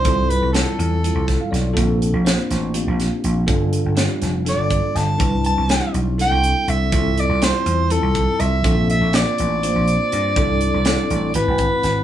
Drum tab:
HH |xxxxxxx|xxxxxxx|xxxxxxx|xxxxxxx|
SD |--o--oo|--oo-o-|--ooo-o|--o-o--|
BD |o----o-|o------|o----o-|o------|

HH |xxxxxxx|xxxxxxx|xxxxxxx|
SD |--o----|--o----|--o---o|
BD |o----o-|o------|o----o-|